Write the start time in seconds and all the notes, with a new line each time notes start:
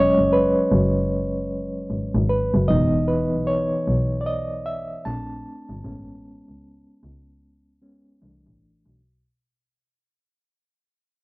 Already playing: F#3 G#3 C#4 C#5 D#5
0.18 F#1
0.33 B4
0.71 F#1
1.90 G#1
2.15 G#1
2.29 B4
2.54 F#1
2.68 E1 E3 B3 D#4 D#5
3.08 B4
3.33 B1
3.47 C#5
3.87 B1
4.21 D5
4.26 D#5
4.66 E5
5.05 A#1 A3 C4 D4 A5
5.70 G1
5.84 A1 G#3 B3 C#4
6.49 C#2
7.03 C#2
7.82 G#3 B3 C#4
8.21 C2 E3 A3 D4
8.46 A1
8.86 B1